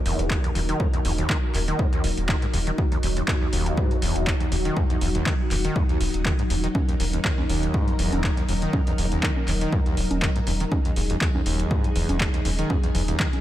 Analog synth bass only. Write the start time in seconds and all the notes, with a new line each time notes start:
0.06 D#1
0.19 D#1
0.55 D#1
1.05 D#1
1.55 D#1
2.04 D#1
2.17 D#1
2.54 D#1
3.03 D#1
3.53 D#1
4.02 D#1
4.16 D#1
4.52 D#1
5.01 D#1
5.51 D#1
6.01 D#1
6.14 D#1
6.50 D#1
7.00 D#1
7.49 D#1
7.99 D#1
8.13 D#1
8.49 D#1
8.98 D#1
9.48 D#1
9.97 D#1
10.11 D#1
10.47 D#1
10.97 D#1
11.46 D#1
11.96 D#1
12.09 D#1
12.45 D#1
12.95 D#1